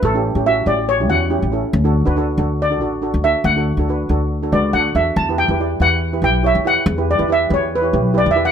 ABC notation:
X:1
M:4/4
L:1/16
Q:1/4=140
K:D
V:1 name="Steel pan"
A4 e2 d2 c2 f4 z2 | z8 d6 e2 | f4 z6 d2 f2 e2 | a2 g4 f4 g2 e2 f2- |
f2 d2 e2 c2 B2 z2 (3d2 e2 f2 |]
V:2 name="Steel pan"
z [CEG] z [CEG] [CEF] z [CEG]2 z [CEG] [CEF] z [CEG] z [CEA]2 | z [DFA] z [DFB] [DFA] z [DFA]2 z [DFA] [DFA] z [DFA] z [DFA]2 | z [DFA] z [DFA] [DFB] z [DFA]2 z [DFA] [DFB] z [DFA] z [DFA]2 | z [EGB] z [EGB] [EGd] z [EGB]2 z [EGB] [EGB] z [EGc] z [EGB]2 |
z [EGB] z [EGB] [EGB] z [EGB]2 z [EGc] [EGB] z [EGB] z [EGB]2 |]
V:3 name="Upright bass" clef=bass
A,,,3 A,,,3 A,,,4 E,,3 A,,,2 z | D,,3 D,,3 D,,4 A,,,3 D,,2 z | D,,3 D,,3 D,,4 C,,2 D,,2 E,,2 | E,,3 E,,3 E,,4 B,,,3 E,,2 z |
E,,3 E,,3 E,,4 B,,,3 E,,2 z |]